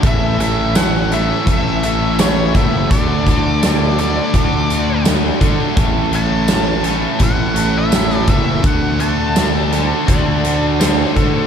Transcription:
<<
  \new Staff \with { instrumentName = "Lead electric guitar" } { \time 4/4 \key a \major \tempo 4 = 84 e''8 e''8 fis''8 e''8 e''8 e''8 cis''8 e''8 | d''4. d''4. r4 | r8 a''4. fis''8. e''8. e''8 | fis''8 a''2. r8 | }
  \new Staff \with { instrumentName = "Electric slide guitar" } { \time 4/4 \key a \major r1 | r1 | r1 | r2 d''4 c''8 a'8 | }
  \new Staff \with { instrumentName = "Overdriven electric guitar" } { \time 4/4 \key a \major <a, e a cis' e' a'>8 <a, e a cis' e' a'>8 <a, e a cis' e' a'>8 <a, e a cis' e' a'>8 <a, e a cis' e' a'>8 <a, e a cis' e' a'>8 <a, e a cis' e' a'>8 <a, e a cis' e' a'>8 | <d a d' fis' a'>8 <d a d' fis' a'>8 <d a d' fis' a'>8 <d a d' fis' a'>8 <d a d' fis' a'>8 <d a d' fis' a'>8 <d a d' fis' a'>8 <d a d' fis' a'>8 | <a, e a cis' e' a'>8 <a, e a cis' e' a'>8 <a, e a cis' e' a'>8 <a, e a cis' e' a'>8 <a, e a cis' e' a'>8 <a, e a cis' e' a'>8 <a, e a cis' e' a'>8 <a, e a cis' e' a'>8 | <d a d' fis' a'>8 <d a d' fis' a'>8 <d a d' fis' a'>8 <d a d' fis' a'>8 <d a d' fis' a'>8 <d a d' fis' a'>8 <d a d' fis' a'>8 <d a d' fis' a'>8 | }
  \new Staff \with { instrumentName = "Overdriven electric guitar" } { \time 4/4 \key a \major <a, a>8 <a, e a>8 <a, e a>8 <a, e a>8 <a, e a>8 <a, e a>8 <a, e a>8 <a, e a>8 | <d a d'>8 <d a d'>8 <d a d'>8 <d a d'>8 <d a d'>8 <d a d'>8 <d a d'>8 <d a d'>8 | <a, e a>8 <a, e a>8 <a, e a>8 <a, e a>8 <a, e a>8 <a, e a>8 <a, e a>8 <a, e a>8 | <d a d'>8 <d a d'>8 <d a d'>8 <d a d'>8 <d a d'>8 <d a d'>8 <d a d'>8 <d a d'>8 | }
  \new Staff \with { instrumentName = "Picked electric bass" } { \clef bass \time 4/4 \key a \major a,,2 a,,4. fis,,8 | d,2 d,4. d16 r16 | a,,2 a,,4. fis,,8 | d,2 d,4. d16 r16 | }
  \new DrumStaff \with { instrumentName = "Drums" } \drummode { \time 4/4 <hh bd>8 <hh sn>8 <hh sn tamb>8 hh8 <hh bd>8 hh8 <hh sn tamb>8 <hh bd>8 | <hh bd>8 <hh bd>8 <hh sn tamb>8 hh8 <hh bd>8 hh8 <hh sn tamb>8 <hh bd>8 | <hh bd>8 hh8 <hh sn tamb>8 hh8 <hh bd>8 hh8 <hh sn tamb>16 sn16 <hh bd>8 | <hh bd>8 hh8 <hh sn tamb>8 hh8 <hh bd>8 hh8 <hh sn tamb>8 <hh bd>8 | }
>>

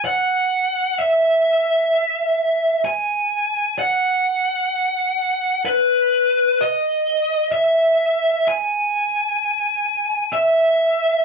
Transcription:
\new Staff \with { instrumentName = "Lead electric guitar" } { \time 4/4 \key e \major \tempo 4 = 64 fis''4 e''2 gis''4 | fis''2 b'4 dis''4 | e''4 gis''2 e''4 | }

